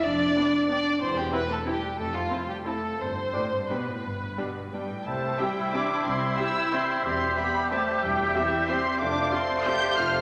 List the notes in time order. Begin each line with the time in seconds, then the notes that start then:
0.01 F1 F2 D4 D5
0.36 B3 D4 G5
0.68 B3 D4 D5 G5
1.00 E1 E2 C4 C5
1.15 G3 G4
1.31 B3 C4 E4 B4 G5
1.48 A3 A4
1.66 G3 C4 E4 G4 G5
1.98 F1 F2 A3 A4
2.14 F3 F4
2.30 C4 E4 A5
2.49 G3 G4
2.65 A3 C4 E4 A4 A5
2.99 G1 G2 C4 C5
3.33 A2 G3 D4 G5
3.52 G2
3.69 B2 G3 B3 D4 B4 G5
3.88 A2
4.04 G1 G2
4.37 B2 G3 D4 G5
4.56 G2
4.73 G2 G3 D4 G5
4.91 A2
5.06 C2 G3 A3 E4 C5 A5
5.38 E3 G3 C4 G4 E5 G5
5.73 E3 C4 D4 G4 E5 D6
6.05 C2 C4 C6
6.37 E3 C4 E4 G4 E5 G5 E6
6.71 E3 C4 G4 E5 G5 C6
7.03 E1 E2 G3 C4 G4 E5 C6
7.36 G3 B3 C4 G4 E5 B5
7.71 G3 A3 C4 G4 C5 E5 A5
8.02 E1 E2 G3 E5 G5
8.34 E3 G3 C4 G4 E5 G5
8.68 G3 C4 G4 E5 C6
8.99 F1 F2 A3 D4 C5 F5 D6
9.32 A3 C4 F4 A4 C5 D5 C6
9.65 A3 C4 F4 G4 A4 C5 G6
9.97 F1 F2 F4 C5 F6